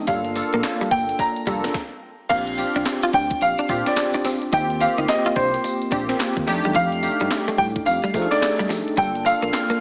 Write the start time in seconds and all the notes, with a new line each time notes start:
Already playing: A3 D4 D#4 A4
0.07 G1 G3 A#3 D4 F4 A4 F5, kick, closed hi-hat, tambourine, cowbell
0.25 closed hi-hat
0.36 A#3 D4 F4 A4, muted clean electric guitar stroke, closed hi-hat, tambourine
0.53 A#1 A#3, closed hi-hat
0.63 muted clean electric guitar stroke, snare, clap, closed hi-hat, tambourine, cowbell
0.81 G3, closed hi-hat
0.91 G1 A#3 G5, kick, open hi-hat
1.09 closed hi-hat
1.19 A#5, muted clean electric guitar stroke, kick, closed hi-hat, tambourine, cowbell
1.36 closed hi-hat
1.47 F1 G3 A#3 D4 F4 A4, kick, closed hi-hat, tambourine
1.64 A#3, snare, closed hi-hat
1.74 kick, snare
2.29 A#1 A#3 C4 D4 F4 G4 F5, kick, closed hi-hat, crash, tambourine
2.47 closed hi-hat
2.57 C4 D4 F4 G4, muted clean electric guitar stroke, closed hi-hat, tambourine
2.76 C2 D4, closed hi-hat
2.85 muted clean electric guitar stroke, snare, clap, closed hi-hat, tambourine
3.03 F4, closed hi-hat
3.13 D2 D4 G5, kick, open hi-hat
3.30 kick, closed hi-hat
3.41 A#1 F5, muted clean electric guitar stroke, closed hi-hat, tambourine
3.58 D4, closed hi-hat
3.69 A#2 C4 D4 F4 G4, kick, closed hi-hat, tambourine
3.86 D5, snare, closed hi-hat
3.96 muted clean electric guitar stroke, snare, clap, closed hi-hat, tambourine
4.14 D4, closed hi-hat
4.25 C4, snare, open hi-hat, tambourine
4.42 closed hi-hat
4.52 D#2 A#3 C4 D#4 F4 G4 G5, kick, closed hi-hat, tambourine
4.70 closed hi-hat
4.80 A#3 C4 F4 G4 F5, muted clean electric guitar stroke, closed hi-hat, tambourine
4.98 D2 D#4, closed hi-hat
5.08 D#5, muted clean electric guitar stroke, snare, clap, closed hi-hat, tambourine
5.26 F4, closed hi-hat
5.36 C2 D4 C5, kick, open hi-hat
5.54 closed hi-hat
5.64 muted clean electric guitar stroke, closed hi-hat, tambourine
5.82 closed hi-hat
5.91 A#1 A#3 C4 D4 F4 G4, kick, closed hi-hat, tambourine
6.09 C4, snare, closed hi-hat
6.19 A#3, snare, clap, closed hi-hat, tambourine
6.37 D#2, muted clean electric guitar stroke, kick, closed hi-hat
6.46 F2 A3 D4 D#4 G4, snare, open hi-hat, tambourine
6.65 E2 G3, closed hi-hat
6.75 F2 F3 F5, kick, closed hi-hat, tambourine
6.92 closed hi-hat
7.03 A3 D4 D#4 G4, muted clean electric guitar stroke, closed hi-hat, tambourine
7.20 G2 G3, closed hi-hat
7.30 muted clean electric guitar stroke, snare, clap, closed hi-hat, tambourine
7.48 A3, closed hi-hat
7.58 A2 G3 G5, kick, open hi-hat
7.76 kick, closed hi-hat
7.86 F2 F5, muted clean electric guitar stroke, closed hi-hat, tambourine
8.04 G3, closed hi-hat
8.14 F3 A3 D4 D#4 G#4, kick, closed hi-hat, tambourine
8.22 A4
8.31 D5, snare, closed hi-hat
8.41 muted clean electric guitar stroke, snare, clap, closed hi-hat, tambourine
8.59 G3, closed hi-hat
8.69 F3, snare, open hi-hat, tambourine
8.88 closed hi-hat
8.97 G1 G3 A#3 D4 F4 A4 G5, kick, closed hi-hat, tambourine
9.15 closed hi-hat
9.25 A#3 D4 F4 A4 F5, muted clean electric guitar stroke, closed hi-hat, tambourine
9.42 A#1 A#3, closed hi-hat
9.53 muted clean electric guitar stroke, snare, clap, closed hi-hat, tambourine
9.70 A#3, closed hi-hat